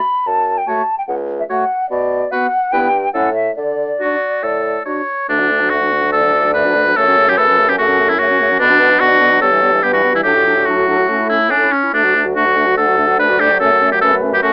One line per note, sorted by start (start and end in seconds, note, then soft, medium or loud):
0.00 0.28 B5 medium
0.27 0.61 F#2 soft
0.27 0.59 A5 medium
0.58 0.69 G5 medium
0.67 0.82 A3 soft
0.67 0.82 F#4 soft
0.67 0.82 C#5 soft
0.67 0.98 A5 medium
0.98 1.03 G5 medium
1.08 1.42 C#2 medium
1.08 1.15 F#5 medium
1.39 1.44 E5 medium
1.49 1.65 A3 soft
1.49 1.64 F#4 soft
1.49 1.64 C#5 soft
1.49 1.89 F#5 medium
1.90 2.25 B2 medium
1.90 2.33 D5 medium
2.31 2.47 B3 soft
2.31 2.46 F#4 soft
2.31 2.47 B4 medium
2.31 2.74 F#5 medium
2.72 3.07 G2 medium
2.72 2.88 B3 soft
2.72 2.88 E4 soft
2.72 2.88 B4 soft
2.72 3.13 G5 medium
3.14 3.49 A2 medium
3.14 3.30 C#4 soft
3.14 3.30 E4 soft
3.14 3.29 A4 soft
3.14 3.34 F#5 medium
3.34 3.55 E5 medium
3.56 3.93 D3 soft
3.56 4.83 D5 medium
4.00 4.15 D4 soft
4.00 4.16 F#4 soft
4.00 4.45 F#4 medium
4.43 4.79 A2 soft
4.43 4.85 A4 soft
4.85 5.02 D4 soft
4.85 5.02 F#4 soft
4.85 5.28 C#5 soft
5.29 6.93 D2 soft
5.29 5.41 D3 soft
5.29 5.42 A3 soft
5.29 5.71 D4 medium
5.39 5.51 F#3 soft
5.39 5.53 D4 soft
5.50 5.62 D3 soft
5.50 5.62 A3 soft
5.60 5.70 F#3 soft
5.60 5.71 D4 soft
5.70 5.82 D3 soft
5.70 5.84 A3 soft
5.70 6.12 F#4 medium
5.81 5.93 F#3 soft
5.81 5.94 D4 soft
5.92 6.04 D3 soft
5.92 6.04 A3 soft
6.02 6.12 F#3 soft
6.02 6.13 D4 soft
6.12 6.24 D3 soft
6.12 6.25 A3 soft
6.12 6.53 A4 medium
6.12 6.93 D5 medium
6.22 6.34 F#3 soft
6.22 6.35 D4 soft
6.33 6.45 D3 soft
6.33 6.45 A3 soft
6.43 6.54 F#3 soft
6.43 6.54 D4 soft
6.54 6.66 D3 soft
6.54 6.67 A3 soft
6.54 6.98 B4 medium
6.65 6.76 F#3 soft
6.65 6.77 D4 soft
6.75 6.87 D3 soft
6.75 6.87 A3 soft
6.86 6.96 F#3 soft
6.86 6.96 D4 soft
6.96 8.57 F#2 medium
6.96 7.08 C#3 soft
6.96 7.09 A3 soft
6.96 7.30 A4 medium
6.96 7.39 C#5 medium
7.07 7.19 F#3 soft
7.07 7.19 C#4 soft
7.17 7.30 C#3 soft
7.17 7.30 A3 soft
7.28 7.38 F#3 soft
7.28 7.37 C#4 soft
7.28 7.39 G4 medium
7.37 7.50 C#3 soft
7.37 7.49 A3 soft
7.37 7.70 A4 medium
7.37 7.77 B4 medium
7.48 7.60 F#3 soft
7.48 7.60 C#4 soft
7.59 7.70 C#3 soft
7.59 7.70 A3 soft
7.68 7.78 F#3 soft
7.68 7.78 C#4 soft
7.68 7.78 G4 medium
7.77 7.91 C#3 soft
7.77 7.90 A3 soft
7.77 8.11 F#4 medium
7.77 8.18 A4 medium
7.88 8.01 F#3 soft
7.88 8.01 C#4 soft
7.99 8.10 C#3 soft
7.99 8.11 A3 soft
8.09 8.18 F#3 soft
8.09 8.19 C#4 soft
8.09 8.21 E4 medium
8.19 8.30 C#3 soft
8.19 8.32 A3 medium
8.19 8.59 F#4 medium
8.19 8.61 C#5 medium
8.28 8.41 F#3 soft
8.28 8.42 C#4 soft
8.39 8.51 C#3 soft
8.39 8.52 A3 soft
8.50 8.59 F#3 soft
8.50 8.60 C#4 soft
8.59 9.43 B2 medium
8.59 8.72 D3 medium
8.59 8.73 B3 medium
8.59 9.02 D4 medium
8.59 9.01 B4 medium
8.71 8.82 F#3 soft
8.71 8.82 D4 soft
8.80 8.92 D3 soft
8.80 8.92 B3 medium
8.90 8.99 F#3 soft
8.90 9.00 D4 soft
9.00 9.11 D3 soft
9.00 9.12 B3 soft
9.00 9.41 F#4 medium
9.00 9.42 D5 medium
9.10 9.21 F#3 soft
9.10 9.23 D4 soft
9.20 9.32 D3 soft
9.20 9.32 B3 soft
9.31 9.40 F#3 soft
9.31 9.41 D4 soft
9.40 10.24 G2 medium
9.40 9.52 G3 soft
9.40 9.53 B3 soft
9.40 9.84 A4 medium
9.40 9.82 C#5 medium
9.51 9.63 E3 soft
9.51 9.63 G3 soft
9.61 9.73 G3 soft
9.61 9.74 B3 soft
9.72 9.82 E3 soft
9.72 9.83 G3 soft
9.82 9.94 G3 soft
9.82 9.95 B3 soft
9.82 9.93 G4 medium
9.82 10.23 B4 medium
9.92 10.05 E3 soft
9.92 10.05 G3 soft
9.92 10.14 F#4 medium
10.03 10.15 G3 soft
10.03 10.16 B3 soft
10.13 10.24 E3 soft
10.13 10.24 G3 soft
10.13 10.20 E4 medium
10.23 11.69 A2 soft
10.23 10.36 F#3 soft
10.23 10.37 D4 soft
10.23 10.67 G4 medium
10.23 11.69 A4 soft
10.34 10.46 D3 soft
10.34 10.47 F#4 soft
10.45 10.57 F#3 soft
10.45 10.57 D4 soft
10.56 10.66 D3 soft
10.56 10.67 F#4 soft
10.66 11.06 F#3 medium
10.66 10.78 D4 soft
10.66 11.29 F#4 medium
10.77 10.89 F#4 soft
10.87 11.00 D4 soft
10.98 11.09 F#4 soft
11.09 11.52 A3 medium
11.09 11.21 C#4 soft
11.20 11.32 E4 soft
11.29 11.42 C#4 soft
11.29 11.52 E4 medium
11.41 11.50 E4 soft
11.51 11.64 C#4 soft
11.51 11.92 C#4 medium
11.51 11.74 D4 medium
11.62 11.74 E4 soft
11.72 11.85 C#4 soft
11.72 11.93 C#4 medium
11.83 11.93 E4 soft
11.93 13.56 D2 soft
11.93 12.05 A3 soft
11.93 12.05 D4 soft
11.93 12.24 D4 medium
12.04 12.16 F#3 soft
12.04 12.17 F#4 soft
12.14 12.27 A3 soft
12.14 12.26 D4 soft
12.25 12.36 F#3 soft
12.25 12.35 F#4 soft
12.35 12.47 A3 soft
12.35 12.47 D4 soft
12.35 12.77 F#4 medium
12.46 12.58 F#3 soft
12.46 12.57 F#4 soft
12.56 12.68 A3 soft
12.56 12.68 D4 soft
12.66 12.77 F#3 soft
12.66 12.76 F#4 soft
12.77 12.89 A3 soft
12.77 12.89 D4 soft
12.77 13.18 A4 medium
12.77 13.21 F#5 medium
12.88 13.00 F#3 soft
12.88 12.99 F#4 soft
12.97 13.10 A3 soft
12.97 13.09 D4 soft
13.08 13.19 F#3 soft
13.08 13.17 F#4 soft
13.18 13.32 A3 soft
13.18 13.30 D4 soft
13.18 13.41 B4 medium
13.18 13.62 D5 medium
13.29 13.42 F#3 soft
13.29 13.40 F#4 soft
13.39 13.52 A3 soft
13.39 13.51 D4 soft
13.39 13.59 G4 medium
13.49 13.60 F#3 soft
13.49 13.59 F#4 soft
13.60 14.53 F#2 medium
13.60 13.73 A3 medium
13.60 13.72 C#4 soft
13.60 13.90 A4 medium
13.60 14.01 C#5 medium
13.70 13.84 F#3 soft
13.70 13.83 A3 soft
13.81 13.94 A3 soft
13.81 13.93 C#4 soft
13.92 14.02 F#3 soft
13.92 14.02 A3 soft
13.92 14.01 G4 medium
14.01 14.14 A3 soft
14.01 14.14 C#4 soft
14.01 14.15 A4 medium
14.01 14.44 B4 medium
14.12 14.24 F#3 soft
14.12 14.25 A3 soft
14.23 14.35 A3 medium
14.23 14.34 C#4 soft
14.32 14.43 F#3 soft
14.32 14.42 A3 soft
14.32 14.38 G4 medium
14.42 14.53 A3 soft
14.42 14.53 C#4 soft
14.42 14.53 F#4 medium
14.42 14.53 A4 medium